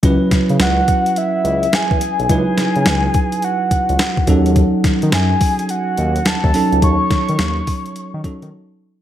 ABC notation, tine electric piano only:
X:1
M:4/4
L:1/8
Q:"Swing 16ths" 1/4=106
K:C#m
V:1 name="Tine electric piano"
[F,CEB]8 | [F,DEB]6- [F,DEB] [F,CDA]- | [F,CDA]6- [F,CDA] [F,CDA]- | [F,CDA]4- [F,CDA] [F,CDA]3 |]